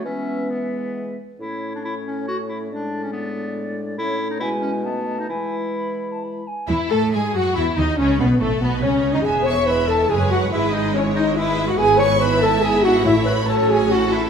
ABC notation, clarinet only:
X:1
M:3/4
L:1/16
Q:1/4=140
K:Bdor
V:1 name="Clarinet"
C4 B,6 z2 | E3 D E2 C2 F2 E2 | D3 C B,6 z2 | [K:E] E3 D E2 C2 B,3 D |
E8 z4 | E2 A2 G2 F2 E2 D2 | C2 B,2 A,2 B,2 C3 D | G2 c2 B2 A2 G2 F2 |
E2 D2 C2 D2 E3 F | [K:A] G2 c2 B2 A2 G2 F2 | E2 B2 A2 G2 F2 E2 |]